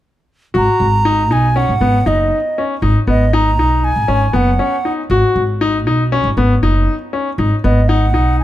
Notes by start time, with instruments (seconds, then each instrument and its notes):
0.54 upright bass G#1, grand piano F#4, flute A#5
0.80 upright bass G#1
1.05 grand piano D#4
1.30 upright bass B1, grand piano D#4, flute G#5
1.56 grand piano C#4, flute F#5
1.69 upright bass G#1
1.81 upright bass G#1, grand piano B3
2.06 upright bass F#1, grand piano D#4, flute D#5
2.58 grand piano C#4
2.82 upright bass G#1, grand piano D#4
3.07 upright bass G#1, grand piano B3, flute D#5
3.33 grand piano D#4, flute A#5
3.58 upright bass B1, grand piano D#4
3.84 flute G#5
3.96 upright bass G#1
4.08 upright bass G#1, grand piano C#4
4.33 upright bass F#1, grand piano B3, flute F#5
4.59 grand piano C#4
4.85 grand piano D#4
5.10 upright bass G#1, grand piano F#4
5.36 upright bass G#1
5.61 grand piano D#4
5.86 upright bass B1, grand piano D#4
6.12 grand piano C#4
6.24 upright bass G#1
6.37 upright bass G#1, grand piano B3
6.63 upright bass F#1, grand piano D#4
7.13 grand piano C#4
7.38 upright bass G#1, grand piano D#4
7.64 upright bass G#1, grand piano B3, flute D#5
7.88 grand piano D#4, flute F#5
8.14 upright bass B1, grand piano D#4
8.40 flute G#5